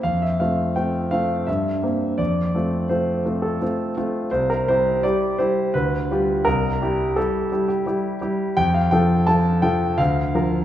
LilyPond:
\new Staff \with { instrumentName = "Grand piano" } { \time 3/4 \key f \major \tempo 4 = 84 << { f''16 e''16 f''8 g''8 f''8 e''4 | d''4 c''8. a'8. r8 | c''16 bes'16 c''8 d''8 c''8 b'4 | bes'4 a'8. g'8. r8 |
g''16 f''16 g''8 a''8 g''8 f''4 | } \\ { f,8 <a c' f'>8 <a c' f'>8 <a c' f'>8 g,8 <bes c'>8 | f,8 <a c' f'>8 <a c' f'>8 <a c' f'>8 <a c' f'>8 <a c' f'>8 | c,8 <g e' g'>8 <g e' g'>8 <g e' g'>8 d,8 <g f' g'>8 | c,8 <g e' g'>8 <g e' g'>8 <g e' g'>8 <g e' g'>8 <g e' g'>8 |
f,8 <f f' a'>8 <f f' a'>8 <f f' a'>8 d,8 <f f' bes'>8 | } >> }